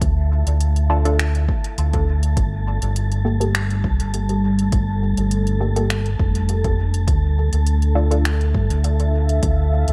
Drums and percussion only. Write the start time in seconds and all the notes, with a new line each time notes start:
0.01 kick, closed hi-hat
0.47 closed hi-hat
0.60 closed hi-hat
0.76 closed hi-hat
1.05 closed hi-hat
1.19 finger snap, closed hi-hat
1.35 closed hi-hat
1.49 kick
1.64 closed hi-hat
1.78 closed hi-hat
1.93 kick, closed hi-hat
2.23 closed hi-hat
2.37 kick, closed hi-hat
2.82 closed hi-hat
2.96 closed hi-hat
3.12 closed hi-hat
3.41 closed hi-hat
3.55 finger snap, closed hi-hat
3.70 closed hi-hat
3.84 kick
4.00 closed hi-hat
4.14 closed hi-hat
4.29 closed hi-hat
4.59 closed hi-hat
4.72 kick, closed hi-hat
5.17 closed hi-hat
5.31 closed hi-hat
5.47 closed hi-hat
5.76 closed hi-hat
5.90 finger snap, closed hi-hat
6.06 closed hi-hat
6.19 kick
6.35 closed hi-hat
6.49 closed hi-hat
6.64 kick, closed hi-hat
6.94 closed hi-hat
7.08 kick, closed hi-hat
7.53 closed hi-hat
7.67 closed hi-hat
7.82 closed hi-hat
8.11 closed hi-hat
8.25 finger snap, closed hi-hat
8.41 closed hi-hat
8.55 kick
8.70 closed hi-hat
8.84 closed hi-hat
9.00 closed hi-hat
9.29 closed hi-hat
9.43 kick, closed hi-hat
9.88 closed hi-hat